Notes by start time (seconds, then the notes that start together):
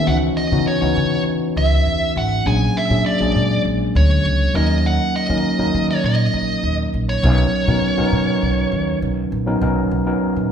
0.07 C#2 E3 B3 C#4 D#4 F#4 F#5
0.37 D#5
0.52 C#3 E3 B3 C#4 D#4 F#4
0.67 C#5
0.82 C#2 E3 B3 C#4 D#4 F#4
0.97 C#3
1.56 C#2 E5
1.86 E2
2.16 G#1 F#5
2.46 A#1 F#3 A#3 C#4 D4 G#4 G#5
2.77 E5
2.90 A#2 F#3 A#3 C#4 D4 G#4
3.06 D5
3.20 A#1 F#3 G#3 A#3 D4 G#4
3.36 A#2
3.65 A#1
3.95 D2 C#5
4.25 C#2
4.54 D#2 F#3 A#3 C#4 D#4 A#4 D#5
4.86 F#5
5.16 D#5
5.29 D#3 F#3 A#3 C#4 D#4 A#4
5.58 D#2 F#3 A#3 C#4 D#4 A#4
5.74 D#3
5.91 C#5
6.04 A#2 D#5
6.34 A#1
6.63 D#2
6.94 A#1
7.09 C#5
7.23 B1 F#3 B3 C#4 D#4 A#4
7.67 B2 F#3 B3 C#4 D#4 A#4
7.97 B1 F#3 B3 C#4 D#4 A#4
8.12 B2
8.42 B1
8.72 D#2
9.02 B1
9.32 A#1
9.46 F#3 B3 C#4 D#4 A#4
9.61 B1 F#3 B3 C#4 D#4 A#4
9.91 B1
10.06 F#3 B3 C#4 D#4 A#4
10.36 A#1